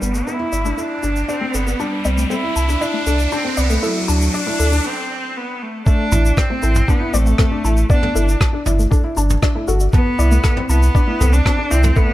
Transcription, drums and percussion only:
0.02 shaker
0.14 shaker
0.28 shaker
0.53 shaker
0.65 shaker
0.78 shaker
1.03 shaker
1.16 shaker
1.29 shaker
1.54 shaker
1.67 shaker
1.80 shaker
2.05 shaker
2.18 shaker
2.31 shaker
2.56 shaker
2.69 shaker
2.82 shaker
3.06 shaker
3.19 shaker
3.32 shaker
3.57 shaker
3.70 shaker
3.83 shaker
4.09 shaker
4.21 shaker
4.34 shaker
4.60 shaker
4.72 shaker
5.87 kick, shaker
6.12 mid tom, shaker
6.25 shaker
6.37 kick, cross-stick, shaker
6.63 shaker
6.75 mid tom, shaker
6.88 kick, shaker
7.14 shaker
7.26 shaker
7.38 kick, cross-stick, mid tom, shaker
7.65 shaker
7.77 shaker
7.90 kick, shaker
8.03 mid tom
8.16 shaker
8.29 shaker
8.41 kick, cross-stick, shaker
8.66 mid tom, shaker
8.79 shaker
8.92 kick, shaker
9.17 shaker
9.30 mid tom, shaker
9.42 kick, cross-stick, shaker
9.68 shaker
9.80 shaker
9.93 kick, mid tom, shaker
10.19 shaker
10.32 shaker
10.44 kick, cross-stick, shaker
10.57 mid tom
10.70 shaker
10.83 shaker
10.95 kick, shaker
11.21 mid tom, shaker
11.33 shaker
11.46 kick, cross-stick, shaker
11.71 shaker
11.83 mid tom, shaker
11.96 kick, shaker

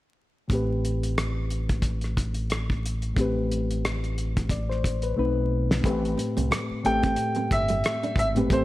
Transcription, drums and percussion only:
0.50 kick, closed hi-hat
0.85 closed hi-hat
1.03 closed hi-hat
1.18 cross-stick, closed hi-hat
1.51 closed hi-hat
1.69 kick, closed hi-hat
1.82 kick, closed hi-hat
2.01 cross-stick, closed hi-hat
2.17 kick, closed hi-hat
2.34 closed hi-hat
2.50 cross-stick, closed hi-hat
2.70 kick
2.86 closed hi-hat
3.02 closed hi-hat
3.17 kick, closed hi-hat
3.52 closed hi-hat
3.71 closed hi-hat
3.85 cross-stick, closed hi-hat
4.04 closed hi-hat
4.18 closed hi-hat
4.37 kick, closed hi-hat
4.49 kick, closed hi-hat
4.71 cross-stick
4.84 kick, closed hi-hat
5.02 closed hi-hat
5.71 snare
5.84 kick, closed hi-hat
6.05 closed hi-hat
6.19 closed hi-hat
6.37 closed hi-hat
6.52 cross-stick, closed hi-hat
6.85 closed hi-hat
7.03 kick, closed hi-hat
7.16 closed hi-hat
7.35 closed hi-hat
7.51 kick, closed hi-hat
7.68 closed hi-hat
7.84 cross-stick, closed hi-hat
8.03 closed hi-hat
8.16 kick, closed hi-hat
8.36 closed hi-hat
8.50 kick, closed hi-hat

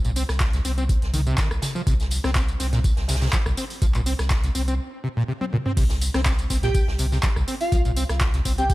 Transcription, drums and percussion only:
0.05 closed hi-hat, tambourine
0.16 closed hi-hat, open hi-hat, tambourine
0.29 cross-stick, snare, tambourine
0.40 kick, snare, clap, closed hi-hat, tambourine
0.53 snare, closed hi-hat, tambourine
0.65 closed hi-hat, open hi-hat, tambourine
0.78 closed hi-hat, tambourine
0.89 kick, closed hi-hat, tambourine
1.02 snare, closed hi-hat
1.14 closed hi-hat, open hi-hat, mid tom, tambourine
1.27 closed hi-hat, tambourine
1.38 kick, snare, clap, closed hi-hat, tambourine
1.51 cross-stick, tambourine
1.62 snare, closed hi-hat, open hi-hat, mid tom, tambourine
1.76 tambourine
1.87 kick, closed hi-hat, tambourine
2.00 snare, closed hi-hat, tambourine
2.10 closed hi-hat, open hi-hat, tambourine
2.24 cross-stick, snare, tambourine
2.35 kick, snare, clap, closed hi-hat, tambourine
2.49 closed hi-hat, tambourine
2.59 snare, closed hi-hat, open hi-hat, tambourine
2.73 snare, closed hi-hat, tambourine
2.84 kick, closed hi-hat, open hi-hat, tambourine
2.97 snare, closed hi-hat
3.08 snare, closed hi-hat, open hi-hat, tambourine
3.15 snare, closed hi-hat
3.22 snare, closed hi-hat, tambourine
3.27 snare, closed hi-hat
3.33 kick, snare, clap, closed hi-hat, tambourine
3.46 cross-stick, tambourine
3.57 closed hi-hat, open hi-hat, tambourine
3.70 open hi-hat, tambourine
3.82 kick, closed hi-hat, tambourine
3.94 clap, closed hi-hat, tambourine
4.06 closed hi-hat, open hi-hat, tambourine
4.19 cross-stick, snare, closed hi-hat, tambourine
4.30 kick, snare, clap, closed hi-hat, tambourine
4.43 snare, closed hi-hat, tambourine
4.55 closed hi-hat, open hi-hat, tambourine
4.68 closed hi-hat, tambourine
5.41 high tom
5.53 mid tom
5.66 mid tom
5.77 kick, closed hi-hat, crash, tambourine
5.89 snare, closed hi-hat, tambourine
6.01 closed hi-hat, open hi-hat, tambourine
6.14 cross-stick, snare, closed hi-hat, tambourine
6.25 kick, snare, clap, closed hi-hat, tambourine
6.39 closed hi-hat, tambourine
6.50 kick, snare, closed hi-hat, open hi-hat, tambourine
6.63 snare, closed hi-hat, tambourine
6.75 kick, closed hi-hat, open hi-hat, tambourine
6.88 snare
6.98 closed hi-hat, open hi-hat, tambourine
7.12 snare, tambourine
7.23 kick, snare, clap, closed hi-hat, tambourine
7.36 cross-stick, tambourine
7.48 closed hi-hat, open hi-hat, tambourine
7.61 open hi-hat, tambourine
7.72 kick, closed hi-hat, tambourine
7.85 closed hi-hat, tambourine
7.96 closed hi-hat, open hi-hat, tambourine
8.09 cross-stick, snare, closed hi-hat, tambourine
8.21 kick, snare, clap, closed hi-hat, tambourine
8.34 snare, closed hi-hat, tambourine
8.45 kick, closed hi-hat, open hi-hat, tambourine
8.58 closed hi-hat, tambourine
8.69 kick, closed hi-hat, tambourine

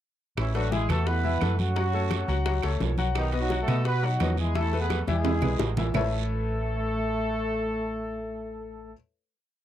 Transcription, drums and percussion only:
0.37 high bongo, high conga, high timbale, long guiro, claves
0.55 high bongo, high conga, high timbale
0.72 high bongo, high conga, short guiro
0.89 high bongo, high conga, low conga, high timbale, short guiro, claves
1.07 high bongo, high conga, high timbale, long guiro
1.24 high bongo, high conga
1.41 high bongo, low bongo, high conga, high timbale, short guiro, claves
1.59 high conga, short guiro
1.76 high bongo, high timbale, long guiro
1.93 high bongo, high conga
2.10 high bongo, high conga, high timbale, short guiro, claves
2.28 high bongo, high conga, short guiro
2.46 high bongo, high conga, high timbale, long guiro
2.62 high bongo, high conga, high timbale, claves
2.80 high bongo, low bongo, high conga, low timbale, short guiro
2.98 high conga, short guiro
3.15 high bongo, high conga, high timbale, long guiro, claves
3.32 high bongo, high conga, high timbale
3.50 high bongo, high conga, short guiro
3.68 high bongo, high conga, low conga, high timbale, short guiro, claves
3.85 high bongo, high conga, high timbale, long guiro
4.03 high bongo, high conga
4.20 high bongo, low bongo, high conga, high timbale, low timbale, short guiro, claves
4.37 high conga, short guiro
4.55 high bongo, high conga, high timbale, long guiro
4.73 high bongo, high conga
4.90 high bongo, high conga, high timbale, short guiro, claves
5.07 high bongo, high conga, short guiro
5.24 high bongo, high timbale, long guiro
5.42 high bongo, low conga, high timbale, claves
5.59 high bongo, low conga, low timbale, short guiro
5.77 low bongo, low conga, low timbale, short guiro
5.94 low bongo, low conga, low timbale, long guiro, claves

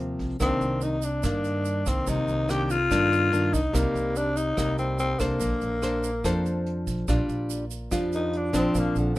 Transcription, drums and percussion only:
0.19 kick, closed hi-hat
0.40 kick, cross-stick, closed hi-hat, shaker
0.61 closed hi-hat, shaker
0.81 closed hi-hat, shaker
1.02 closed hi-hat, shaker
1.23 kick, cross-stick, closed hi-hat, shaker
1.44 closed hi-hat, shaker
1.65 closed hi-hat, shaker
1.86 kick, cross-stick, closed hi-hat, shaker
2.07 kick, closed hi-hat, shaker
2.28 closed hi-hat, shaker
2.49 cross-stick, closed hi-hat, shaker
2.70 closed hi-hat, shaker
2.91 kick, cross-stick, closed hi-hat, shaker
3.12 closed hi-hat, shaker
3.33 closed hi-hat, shaker
3.54 kick, closed hi-hat, shaker
3.74 kick, cross-stick, closed hi-hat, shaker
3.95 closed hi-hat, shaker
4.16 closed hi-hat, shaker
4.37 closed hi-hat, shaker
4.57 kick, cross-stick, closed hi-hat, shaker
4.78 closed hi-hat, shaker
4.99 closed hi-hat, shaker
5.20 kick, cross-stick, closed hi-hat, shaker
5.40 kick, closed hi-hat, shaker
5.61 closed hi-hat, shaker
5.82 cross-stick, closed hi-hat, shaker
6.04 closed hi-hat, shaker
6.24 kick, cross-stick, closed hi-hat, shaker
6.45 closed hi-hat, shaker
6.66 closed hi-hat
6.87 kick, closed hi-hat, shaker
7.08 kick, cross-stick, closed hi-hat, shaker
7.29 closed hi-hat, shaker
7.50 closed hi-hat, shaker
7.71 closed hi-hat, shaker
7.91 kick, cross-stick, closed hi-hat, shaker
8.12 closed hi-hat, shaker
8.33 closed hi-hat
8.54 kick, cross-stick, closed hi-hat, shaker
8.75 kick, closed hi-hat, shaker
8.96 closed hi-hat, shaker

